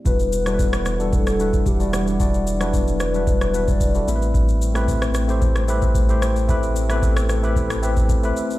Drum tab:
SH |xxxxxxxxxxxxxxxx|xxxxxxxxxxxxxxxx|xxxxxxxxxxxxxxxx|xxxxxxxxxxxxxxxx|
SD |---r-rr--r----r-|---r--r--r------|---r-rr--r----r-|---r-rr--r------|
BD |o---o---o--oo---|o---o---o--oo---|o---o---o--oo---|o---o---o--oo---|